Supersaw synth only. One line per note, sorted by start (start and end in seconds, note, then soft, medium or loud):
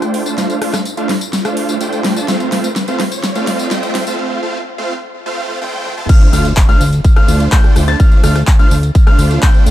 0.00 0.23 A3 medium
0.00 0.23 D4 medium
0.00 0.23 F4 medium
0.00 0.23 C5 medium
0.00 0.23 G5 loud
0.26 0.35 A3 medium
0.26 0.35 D4 medium
0.26 0.35 F4 medium
0.26 0.35 C5 medium
0.26 0.35 A5 medium
0.38 0.59 A3 medium
0.38 0.59 D4 medium
0.38 0.59 F4 medium
0.38 0.59 C5 medium
0.38 0.59 F5 medium
0.62 0.77 A3 medium
0.62 0.77 D4 medium
0.62 0.77 F4 medium
0.62 0.77 C5 medium
0.62 0.77 F5 medium
0.97 1.13 A3 medium
0.97 1.13 D4 medium
0.97 1.13 F4 medium
0.97 1.13 C5 medium
0.97 1.13 F5 loud
1.45 1.78 A3 medium
1.45 1.78 D4 medium
1.45 1.78 F4 medium
1.45 1.78 C5 medium
1.45 1.78 F5 loud
1.81 2.14 A3 medium
1.81 2.14 D4 medium
1.81 2.14 F4 medium
1.81 2.14 C5 medium
1.81 2.14 G5 loud
2.16 2.26 A3 medium
2.16 2.26 D4 medium
2.16 2.26 F4 medium
2.16 2.26 C5 medium
2.16 2.26 A5 medium
2.28 2.49 A3 medium
2.28 2.49 C4 medium
2.28 2.49 F4 medium
2.28 2.49 C5 medium
2.28 2.49 F5 medium
2.52 2.68 A3 medium
2.52 2.68 C4 medium
2.52 2.68 F4 medium
2.52 2.68 C5 medium
2.52 2.68 F5 loud
2.88 3.03 A3 medium
2.88 3.03 C4 medium
2.88 3.03 F4 medium
2.88 3.03 C5 medium
2.88 3.03 F5 loud
3.35 3.68 A3 medium
3.35 3.68 C4 medium
3.35 3.68 F4 medium
3.35 3.68 C5 medium
3.35 3.68 F5 loud
3.71 4.04 A3 medium
3.71 4.04 C4 medium
3.71 4.04 F4 medium
3.71 4.04 C5 medium
3.71 4.04 G5 loud
4.07 4.16 A3 medium
4.07 4.16 C4 medium
4.07 4.16 F4 medium
4.07 4.16 C5 medium
4.07 4.16 A5 medium
4.19 4.40 A3 medium
4.19 4.40 C4 medium
4.19 4.40 F4 medium
4.19 4.40 C5 medium
4.19 4.40 F5 medium
4.43 4.58 A3 medium
4.43 4.58 C4 medium
4.43 4.58 F4 medium
4.43 4.58 C5 medium
4.43 4.58 F5 medium
4.78 4.94 A3 medium
4.78 4.94 C4 medium
4.78 4.94 F4 medium
4.78 4.94 C5 medium
4.78 4.94 F5 loud
5.26 5.59 A3 loud
5.26 5.59 C4 medium
5.26 5.59 F4 medium
5.26 5.59 C5 medium
5.26 5.59 F5 loud
5.62 5.95 A3 loud
5.62 5.95 C4 medium
5.62 5.95 F4 medium
5.62 5.95 C5 medium
5.62 5.95 G5 loud
5.97 6.06 A3 medium
5.97 6.06 C4 medium
5.97 6.06 F4 medium
5.97 6.06 C5 medium
5.97 6.06 A5 medium
6.09 6.30 A3 medium
6.09 6.30 D4 medium
6.09 6.30 F4 medium
6.09 6.30 C5 medium
6.09 6.30 F5 medium
6.33 6.49 A3 medium
6.33 6.49 D4 medium
6.33 6.49 F4 medium
6.33 6.49 C5 medium
6.33 6.49 F5 loud
6.69 6.84 A3 medium
6.69 6.84 D4 medium
6.69 6.84 F4 medium
6.69 6.84 C5 medium
6.69 6.84 F5 loud
7.16 7.49 A3 medium
7.16 7.49 D4 medium
7.16 7.49 F4 medium
7.16 7.49 C5 medium
7.16 7.49 F5 loud
7.52 7.85 A3 medium
7.52 7.85 D4 medium
7.52 7.85 F4 medium
7.52 7.85 C5 medium
7.52 7.85 G5 loud
7.88 7.97 A3 medium
7.88 7.97 D4 medium
7.88 7.97 F4 medium
7.88 7.97 C5 medium
7.88 7.97 A5 medium
8.00 8.21 A3 medium
8.00 8.21 D4 medium
8.00 8.21 F4 medium
8.00 8.21 C5 medium
8.00 8.21 F5 medium
8.24 8.39 A3 medium
8.24 8.39 D4 medium
8.24 8.39 F4 medium
8.24 8.39 C5 medium
8.24 8.39 F5 loud
8.59 8.75 A3 medium
8.59 8.75 D4 medium
8.59 8.75 F4 medium
8.59 8.75 C5 medium
8.59 8.75 F5 loud
9.07 9.40 A3 medium
9.07 9.40 D4 medium
9.07 9.40 F4 medium
9.07 9.40 C5 medium
9.07 9.40 F5 loud
9.42 9.71 A3 loud
9.42 9.71 D4 medium
9.42 9.71 F4 medium
9.42 9.71 C5 medium
9.42 9.71 G5 loud